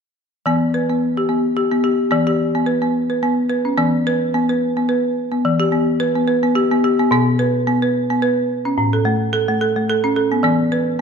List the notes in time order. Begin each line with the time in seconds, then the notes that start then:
0.46 E3 B3
0.74 B4
0.89 B3
1.17 G4
1.29 B3
1.57 G4
1.71 B3
1.84 G4
2.11 E3 B3
2.27 G4
2.55 B3
2.66 B4
2.82 B3
3.10 B4
3.23 B3
3.50 B4
3.65 C#4
3.78 E3 B3
4.07 B4
4.34 B3
4.49 B4
4.77 B3
4.89 B4
5.32 B3
5.45 E3
5.60 G4
5.72 B3
6.00 B4
6.15 B3
6.28 B4
6.43 B3
6.55 G4
6.71 B3
6.84 G4
6.99 B3
7.11 B2 B3
7.39 B4
7.67 B3
7.82 B4
8.10 B3
8.22 B4
8.65 C#4
8.78 A2
8.93 A4
9.05 A3
9.33 A4
9.49 A3
9.61 A4
9.76 A3
9.89 A4
10.04 C#4
10.16 A4
10.32 B3
10.43 E3 B3
10.72 B4